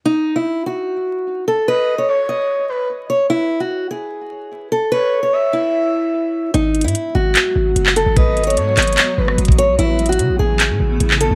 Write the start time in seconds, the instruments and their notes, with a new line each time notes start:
0.05 steel-string acoustic guitar D#4
0.36 steel-string acoustic guitar E4
0.66 steel-string acoustic guitar F#4
1.48 steel-string acoustic guitar A4
1.68 steel-string acoustic guitar B4, soft synth lead D#5
1.98 steel-string acoustic guitar C#5
2.08 soft synth lead C#5
2.29 steel-string acoustic guitar D#5
2.69 soft synth lead B4
3.10 steel-string acoustic guitar C#5
3.30 steel-string acoustic guitar E4
3.60 steel-string acoustic guitar F#4
3.91 steel-string acoustic guitar G#4
4.72 steel-string acoustic guitar A4
4.92 steel-string acoustic guitar B4, soft synth lead C#5
5.23 steel-string acoustic guitar C#5
5.33 soft synth lead E5
5.53 steel-string acoustic guitar E4
6.54 808-style bass G#1, ambient pad F#3 G#3 B3 F#4, steel-string acoustic guitar D#4, closed hi-hat
6.75 closed hi-hat
6.81 808-style bass G#2, steel-string acoustic guitar E4, closed hi-hat
6.88 closed hi-hat
6.95 closed hi-hat
7.15 808-style bass G#1, steel-string acoustic guitar F#4
7.35 clap, closed hi-hat
7.56 808-style bass G#1
7.76 808-style bass F#1, closed hi-hat
7.86 clap
7.96 steel-string acoustic guitar A4, closed hi-hat
8.06 808-style bass G#1
8.17 steel-string acoustic guitar B4, soft synth lead D#5, kick, closed hi-hat
8.37 closed hi-hat
8.44 steel-string acoustic guitar C#5, closed hi-hat
8.50 closed hi-hat
8.57 808-style bass G#2, soft synth lead C#5, closed hi-hat
8.77 808-style bass G#1, steel-string acoustic guitar D#5, clap, closed hi-hat
8.82 closed hi-hat
8.87 closed hi-hat
8.93 closed hi-hat
8.98 clap, closed hi-hat
9.18 808-style bass G#1, soft synth lead B4
9.28 cross-stick
9.38 808-style bass G#1, closed hi-hat
9.45 kick, closed hi-hat
9.52 closed hi-hat
9.58 steel-string acoustic guitar C#5, closed hi-hat
9.69 808-style bass B1
9.79 808-style bass A1, ambient pad C#3 A3 B3 E4, steel-string acoustic guitar E4, closed hi-hat
9.99 closed hi-hat
10.06 steel-string acoustic guitar F#4, closed hi-hat
10.12 closed hi-hat
10.19 808-style bass C#3, closed hi-hat
10.29 808-style bass A1
10.39 808-style bass A1, steel-string acoustic guitar G#4
10.60 clap, closed hi-hat
10.70 808-style bass A2
10.80 808-style bass A1
11.00 808-style bass A1, closed hi-hat
11.10 clap
11.21 steel-string acoustic guitar A4, closed hi-hat
11.31 808-style bass A1